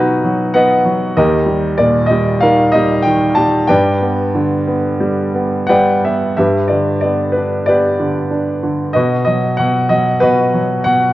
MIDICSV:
0, 0, Header, 1, 2, 480
1, 0, Start_track
1, 0, Key_signature, 1, "major"
1, 0, Tempo, 628931
1, 893, Time_signature, 4, 2, 24, 8
1, 3300, Tempo, 678733
1, 4740, Tempo, 655738
1, 5700, Tempo, 634921
1, 8315, End_track
2, 0, Start_track
2, 0, Title_t, "Grand piano"
2, 0, Program_c, 0, 0
2, 0, Control_c, 0, 64, 127
2, 0, Note_on_c, 0, 47, 53
2, 0, Note_on_c, 0, 54, 41
2, 0, Note_on_c, 0, 59, 42
2, 0, Note_on_c, 0, 63, 49
2, 0, Note_on_c, 0, 66, 51
2, 0, Note_on_c, 0, 71, 64
2, 0, Note_on_c, 0, 75, 80
2, 174, Note_off_c, 0, 54, 0
2, 186, Note_on_c, 0, 54, 39
2, 404, Note_off_c, 0, 59, 0
2, 408, Note_off_c, 0, 71, 0
2, 411, Note_on_c, 0, 78, 73
2, 415, Note_on_c, 0, 59, 45
2, 419, Note_on_c, 0, 71, 51
2, 421, Note_off_c, 0, 75, 0
2, 421, Note_on_c, 0, 75, 50
2, 639, Note_off_c, 0, 54, 0
2, 651, Note_on_c, 0, 54, 45
2, 861, Note_off_c, 0, 47, 0
2, 863, Note_off_c, 0, 71, 0
2, 864, Note_off_c, 0, 75, 0
2, 865, Note_off_c, 0, 66, 0
2, 867, Note_off_c, 0, 63, 0
2, 877, Note_off_c, 0, 59, 0
2, 883, Note_off_c, 0, 54, 0
2, 891, Note_on_c, 0, 39, 56
2, 891, Note_on_c, 0, 75, 68
2, 901, Note_on_c, 0, 70, 51
2, 903, Control_c, 0, 64, 0
2, 904, Note_off_c, 0, 78, 0
2, 905, Note_on_c, 0, 67, 49
2, 1036, Control_c, 0, 64, 127
2, 1115, Note_on_c, 0, 55, 42
2, 1355, Note_on_c, 0, 74, 71
2, 1363, Note_on_c, 0, 46, 48
2, 1382, Note_off_c, 0, 75, 0
2, 1574, Note_on_c, 0, 75, 68
2, 1596, Note_off_c, 0, 55, 0
2, 1608, Note_on_c, 0, 55, 47
2, 1610, Note_off_c, 0, 74, 0
2, 1825, Note_off_c, 0, 70, 0
2, 1827, Note_off_c, 0, 67, 0
2, 1836, Note_on_c, 0, 77, 77
2, 1842, Note_off_c, 0, 75, 0
2, 1852, Note_on_c, 0, 70, 60
2, 1853, Note_on_c, 0, 51, 43
2, 2076, Note_on_c, 0, 75, 79
2, 2089, Note_off_c, 0, 55, 0
2, 2093, Note_off_c, 0, 77, 0
2, 2101, Note_on_c, 0, 55, 46
2, 2303, Note_off_c, 0, 46, 0
2, 2310, Note_on_c, 0, 79, 79
2, 2327, Note_off_c, 0, 51, 0
2, 2334, Note_off_c, 0, 75, 0
2, 2339, Note_on_c, 0, 51, 46
2, 2557, Note_on_c, 0, 81, 83
2, 2564, Note_off_c, 0, 55, 0
2, 2571, Note_off_c, 0, 79, 0
2, 2576, Note_on_c, 0, 55, 41
2, 2785, Note_off_c, 0, 39, 0
2, 2786, Note_off_c, 0, 70, 0
2, 2804, Note_off_c, 0, 51, 0
2, 2805, Note_on_c, 0, 79, 76
2, 2809, Note_off_c, 0, 55, 0
2, 2814, Note_off_c, 0, 81, 0
2, 2815, Note_on_c, 0, 71, 51
2, 2817, Note_on_c, 0, 74, 52
2, 2819, Note_on_c, 0, 43, 58
2, 2826, Control_c, 0, 64, 0
2, 2971, Control_c, 0, 64, 127
2, 3065, Note_on_c, 0, 59, 43
2, 3317, Note_on_c, 0, 50, 46
2, 3537, Note_off_c, 0, 59, 0
2, 3548, Note_on_c, 0, 59, 46
2, 3781, Note_on_c, 0, 55, 49
2, 4010, Note_off_c, 0, 59, 0
2, 4021, Note_on_c, 0, 59, 41
2, 4222, Note_off_c, 0, 79, 0
2, 4227, Note_off_c, 0, 71, 0
2, 4228, Note_off_c, 0, 74, 0
2, 4235, Note_off_c, 0, 50, 0
2, 4249, Note_on_c, 0, 78, 70
2, 4259, Note_off_c, 0, 55, 0
2, 4266, Note_on_c, 0, 74, 51
2, 4267, Note_on_c, 0, 71, 52
2, 4268, Note_on_c, 0, 79, 59
2, 4269, Note_on_c, 0, 55, 46
2, 4493, Note_off_c, 0, 79, 0
2, 4506, Note_off_c, 0, 59, 0
2, 4517, Note_on_c, 0, 59, 42
2, 4518, Note_on_c, 0, 76, 57
2, 4714, Note_off_c, 0, 43, 0
2, 4718, Note_off_c, 0, 71, 0
2, 4718, Note_off_c, 0, 74, 0
2, 4732, Note_off_c, 0, 76, 0
2, 4733, Note_off_c, 0, 55, 0
2, 4741, Note_off_c, 0, 59, 0
2, 4744, Note_on_c, 0, 76, 57
2, 4750, Control_c, 0, 64, 0
2, 4753, Note_off_c, 0, 78, 0
2, 4753, Note_on_c, 0, 43, 49
2, 4761, Note_on_c, 0, 67, 44
2, 4761, Note_on_c, 0, 71, 40
2, 4876, Control_c, 0, 64, 127
2, 4971, Note_on_c, 0, 74, 50
2, 4990, Note_off_c, 0, 76, 0
2, 4993, Note_on_c, 0, 50, 34
2, 5205, Note_off_c, 0, 74, 0
2, 5216, Note_on_c, 0, 74, 52
2, 5239, Note_on_c, 0, 59, 39
2, 5434, Note_off_c, 0, 71, 0
2, 5445, Note_on_c, 0, 71, 52
2, 5467, Note_off_c, 0, 74, 0
2, 5482, Note_on_c, 0, 62, 42
2, 5682, Note_off_c, 0, 67, 0
2, 5693, Note_on_c, 0, 74, 63
2, 5699, Note_off_c, 0, 71, 0
2, 5704, Note_off_c, 0, 59, 0
2, 5713, Note_on_c, 0, 67, 46
2, 5713, Note_on_c, 0, 71, 45
2, 5715, Note_on_c, 0, 59, 41
2, 5921, Note_off_c, 0, 50, 0
2, 5947, Note_on_c, 0, 50, 37
2, 6171, Note_off_c, 0, 62, 0
2, 6182, Note_on_c, 0, 62, 41
2, 6415, Note_off_c, 0, 50, 0
2, 6427, Note_on_c, 0, 50, 36
2, 6647, Note_off_c, 0, 67, 0
2, 6648, Note_off_c, 0, 43, 0
2, 6648, Note_off_c, 0, 71, 0
2, 6650, Note_off_c, 0, 59, 0
2, 6653, Note_on_c, 0, 75, 65
2, 6655, Note_off_c, 0, 62, 0
2, 6664, Note_off_c, 0, 50, 0
2, 6666, Note_on_c, 0, 66, 49
2, 6670, Note_on_c, 0, 71, 46
2, 6674, Note_on_c, 0, 47, 51
2, 6682, Control_c, 0, 64, 0
2, 6697, Note_off_c, 0, 74, 0
2, 6792, Control_c, 0, 64, 127
2, 6879, Note_off_c, 0, 75, 0
2, 6890, Note_on_c, 0, 75, 64
2, 6906, Note_on_c, 0, 54, 37
2, 7134, Note_on_c, 0, 78, 69
2, 7140, Note_off_c, 0, 47, 0
2, 7150, Note_off_c, 0, 75, 0
2, 7151, Note_on_c, 0, 47, 47
2, 7372, Note_off_c, 0, 54, 0
2, 7378, Note_on_c, 0, 75, 63
2, 7383, Note_on_c, 0, 54, 42
2, 7390, Note_off_c, 0, 78, 0
2, 7597, Note_off_c, 0, 66, 0
2, 7598, Note_off_c, 0, 71, 0
2, 7606, Note_off_c, 0, 75, 0
2, 7613, Note_on_c, 0, 71, 72
2, 7622, Note_on_c, 0, 66, 46
2, 7624, Note_on_c, 0, 75, 49
2, 7625, Note_off_c, 0, 47, 0
2, 7636, Note_on_c, 0, 47, 44
2, 7857, Note_off_c, 0, 54, 0
2, 7869, Note_on_c, 0, 54, 41
2, 8066, Note_off_c, 0, 71, 0
2, 8096, Note_on_c, 0, 78, 72
2, 8097, Note_off_c, 0, 47, 0
2, 8109, Note_on_c, 0, 47, 42
2, 8315, Note_off_c, 0, 47, 0
2, 8315, Note_off_c, 0, 54, 0
2, 8315, Note_off_c, 0, 66, 0
2, 8315, Note_off_c, 0, 75, 0
2, 8315, Note_off_c, 0, 78, 0
2, 8315, End_track
0, 0, End_of_file